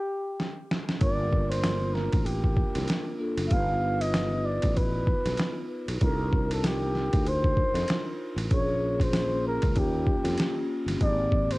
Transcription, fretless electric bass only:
1.01 G1
2.13 A1
2.75 C2
3.37 F#1
3.51 G1
4.64 A1
5.26 B1
5.88 B1
6.01 C2
7.13 D2
7.74 F2
8.36 A1
8.51 A#1
9.63 C#2
9.76 D#2
10.24 F2
10.86 G1
11.01 G#1

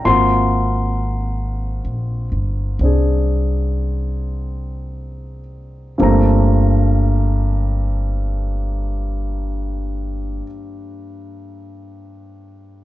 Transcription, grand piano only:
0.05 A#3 C4 F4 F#4 C6
2.81 C4 D4 G#4
5.98 G2 F3 A3 A#3 C4
6.03 A#5

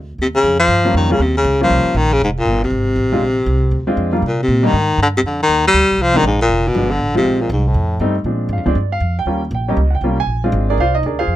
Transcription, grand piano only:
0.84 G3 A#3 C#4 F4
1.10 G3 A#3 C#4 F4
1.61 G3 A#3 C#4 F4
3.12 G#3 C4 D4 F4
3.87 G#3 C4 D4 F4
4.12 G3 A#3 D4 F4
4.63 G3 A#3 D4 D#4
6.14 F3 G#3 C4 D4
6.75 F3 G#3 B3 D4
7.15 F3 G#3 C4 F4
8.01 G3 A3 C4 D#4
8.26 F3 G#3 C4 D4
8.53 F5
8.66 F3 G#3 C4 D4 D5
8.92 F5
9.19 G5
9.27 G3 A#3 C#4 F4
9.55 G5
9.68 G3 A#3 C#4 G4 D#5
9.95 G5
10.04 G3 A#3 C#4 F4
10.20 G#5
10.44 G#3 C4 D4 F4
10.70 D4 G#4 A#4 D5
10.80 F4 C5 D5 F5
10.95 D#4 D#5
11.06 D4 G#4 A#4 D5
11.19 F4 G#4 C5 F5

